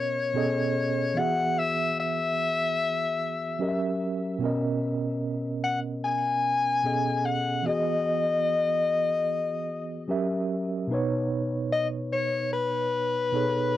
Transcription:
0.00 0.30 B2 medium
0.00 0.31 B3 medium
0.00 0.32 C#4 medium
0.00 0.33 A#4 medium
0.00 1.20 C#5 medium
0.34 1.16 B2 medium
0.34 1.14 B3 medium
0.34 1.17 C#4 medium
0.34 1.17 G#4 medium
0.34 1.17 A4 medium
0.34 1.18 D#5 medium
1.14 3.55 E3 medium
1.14 3.56 B3 medium
1.14 3.56 F#4 medium
1.18 3.57 G#4 medium
1.18 3.58 E5 medium
1.18 1.60 F#5 loud
1.59 1.99 E5 loud
2.00 3.98 E5 loud
3.59 4.41 F#3 medium
3.59 4.41 C#4 medium
3.59 4.41 G4 medium
3.59 4.42 A#4 medium
3.59 3.69 D#5 medium
3.69 4.46 E5 medium
4.38 6.79 B2 medium
4.38 6.80 B3 medium
4.38 6.81 C#4 medium
4.44 6.82 A#4 medium
4.44 6.83 D#5 medium
5.64 5.80 F#5 medium
6.04 7.27 G#5 loud
6.83 7.65 B2 medium
6.83 7.63 B3 medium
6.83 7.66 C#4 medium
6.83 7.66 G#4 medium
6.83 7.66 A4 medium
6.83 7.67 D#5 medium
7.25 7.68 F#5 medium
7.63 10.03 E3 medium
7.63 10.04 B3 medium
7.63 10.05 F#4 medium
7.63 10.09 D#5 loud
7.67 10.06 G#4 medium
7.67 10.07 D#5 medium
10.08 10.89 F#3 medium
10.08 10.90 C#4 medium
10.08 10.90 G4 medium
10.08 10.91 A#4 medium
10.08 10.91 E5 medium
10.87 13.28 B2 medium
10.87 13.29 B3 medium
10.87 13.30 D#4 medium
10.92 13.30 B4 medium
10.92 13.31 C#5 medium
11.72 11.88 D#5 loud
12.13 12.50 C#5 loud
12.53 13.77 B4 loud
13.32 13.77 B2 medium
13.32 13.77 B3 medium
13.32 13.77 D#4 medium
13.32 13.77 G#4 medium
13.32 13.77 A4 medium
13.32 13.77 C#5 medium

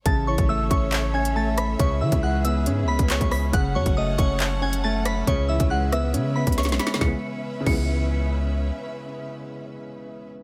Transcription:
0.06 0.37 A1 loud
0.06 1.14 C#3 medium
0.06 1.78 A3 medium
0.06 1.78 A4 medium
0.06 1.78 C#5 medium
0.06 3.50 E5 medium
0.06 0.25 A5 loud
0.06 0.26 A6 medium
0.06 kick loud
0.06 closed hi-hat medium
0.27 1.36 E3 medium
0.27 0.47 C#5 medium
0.27 0.47 C#6 medium
0.38 0.61 A1 loud
0.38 kick medium
0.38 closed hi-hat medium
0.49 1.34 A3 medium
0.49 0.69 E5 medium
0.49 0.68 E6 medium
0.60 0.70 G#1 loud
0.71 1.76 A1 loud
0.71 1.12 C#4 medium
0.71 0.90 C#5 medium
0.71 0.90 C#6 medium
0.71 kick loud
0.71 closed hi-hat medium
0.92 1.79 C#5 loud
0.92 clap loud
0.92 closed hi-hat medium
1.14 1.79 C#4 medium
1.14 1.33 G#5 medium
1.14 1.34 G#6 medium
1.25 closed hi-hat medium
1.36 1.79 A3 medium
1.36 1.55 A5 medium
1.36 1.56 A6 medium
1.57 1.77 B5 medium
1.57 1.77 B6 medium
1.57 cross-stick loud
1.57 closed hi-hat medium
1.79 2.03 C#2 loud
1.79 2.88 C#3 loud
1.79 6.97 C#4 medium
1.79 3.52 G#4 medium
1.79 3.52 B4 medium
1.79 2.00 C#5 medium
1.79 1.99 C#6 medium
1.79 kick loud
1.79 closed hi-hat medium
2.01 3.10 E3 medium
2.01 2.12 E3 loud
2.01 2.21 E5 medium
2.01 2.21 E6 medium
2.12 2.68 C#2 loud
2.12 kick loud
2.12 closed hi-hat medium
2.23 3.09 G#3 medium
2.23 2.43 F#5 medium
2.23 2.42 F#6 medium
2.45 2.87 B3 medium
2.45 2.64 E5 medium
2.45 2.64 E6 medium
2.45 closed hi-hat medium
2.66 2.84 G#2 loud
2.66 3.54 C#4 loud
2.66 closed hi-hat medium
2.83 2.98 C#2 loud
2.88 3.53 B3 medium
2.88 3.07 B5 medium
2.88 3.08 B6 medium
2.99 3.20 C#2 loud
2.99 kick medium
2.99 closed hi-hat medium
3.10 3.54 G#3 medium
3.10 3.30 C#5 medium
3.10 3.30 C#6 medium
3.10 clap loud
3.10 closed hi-hat medium
3.21 3.52 C#2 loud
3.21 kick loud
3.21 closed hi-hat medium
3.31 3.51 B5 medium
3.31 3.51 B6 medium
3.31 cross-stick medium
3.31 open hi-hat medium
3.53 3.77 F#1 loud
3.53 4.62 C#3 medium
3.53 5.26 F#3 medium
3.53 5.26 A4 medium
3.53 5.26 F#5 medium
3.53 3.73 F#5 medium
3.53 3.73 F#6 medium
3.53 kick loud
3.53 closed hi-hat medium
3.75 3.85 F#2 loud
3.75 4.84 F#3 medium
3.75 3.95 C#5 medium
3.75 3.94 C#6 medium
3.86 4.17 F#1 loud
3.86 kick medium
3.86 closed hi-hat medium
3.97 4.83 A3 medium
3.97 4.17 D#5 medium
3.97 4.16 D#6 medium
4.18 5.23 F#1 loud
4.18 4.60 C#4 medium
4.18 4.38 C#5 medium
4.18 4.38 C#6 medium
4.18 kick loud
4.18 closed hi-hat medium
4.40 5.27 C#5 loud
4.40 clap loud
4.40 closed hi-hat medium
4.62 5.27 C#4 medium
4.62 4.81 G#5 medium
4.62 4.82 G#6 medium
4.73 closed hi-hat medium
4.84 5.28 A3 loud
4.84 5.03 A5 loud
4.84 5.04 A6 medium
5.05 5.25 B5 medium
5.05 5.25 B6 medium
5.05 cross-stick loud
5.05 closed hi-hat medium
5.27 5.59 C#2 loud
5.27 7.00 C#3 medium
5.27 6.36 C#3 loud
5.27 6.99 B4 medium
5.27 5.47 C#5 medium
5.27 7.00 E5 medium
5.27 5.47 C#6 medium
5.27 kick loud
5.27 closed hi-hat medium
5.48 6.57 E3 medium
5.48 5.69 E5 medium
5.48 5.68 E6 medium
5.60 6.16 C#2 loud
5.60 kick loud
5.60 closed hi-hat medium
5.70 6.56 G#3 medium
5.70 5.90 F#5 medium
5.70 5.90 F#6 medium
5.92 6.35 B3 medium
5.92 6.12 E5 medium
5.92 6.12 E6 medium
5.92 cross-stick loud
5.92 closed hi-hat medium
6.14 6.45 C#3 loud
6.14 7.01 C#4 loud
6.14 closed hi-hat medium
6.36 7.02 B3 medium
6.36 6.55 B5 medium
6.36 6.56 B6 medium
6.47 6.70 C#2 loud
6.47 kick loud
6.47 closed hi-hat medium
6.52 closed hi-hat medium
6.58 7.01 G#3 medium
6.58 6.78 C#5 medium
6.58 6.77 C#6 medium
6.58 snare medium
6.58 closed hi-hat medium
6.63 snare medium
6.63 closed hi-hat soft
6.69 6.79 B1 loud
6.69 snare medium
6.69 closed hi-hat soft
6.79 6.99 B5 medium
6.79 6.99 B6 medium
6.79 snare medium
6.79 closed hi-hat medium
6.79 open hi-hat medium
6.87 snare loud
6.94 7.10 C#3 medium
6.94 snare loud
6.99 7.13 C#2 loud
6.99 10.30 C#3 medium
6.99 7.12 E3 medium
6.99 7.15 G#3 medium
6.99 10.30 C#4 medium
6.99 10.30 B4 medium
6.99 10.30 E5 medium
6.99 7.13 C#7 medium
6.99 kick loud
6.99 snare medium
7.07 7.17 B3 medium
7.61 10.43 C#3 medium
7.65 8.71 C#2 loud
7.65 10.43 E3 medium
7.65 10.43 G#3 medium
7.65 8.28 C#7 medium
7.65 kick loud
7.65 crash medium
7.73 10.43 B3 loud

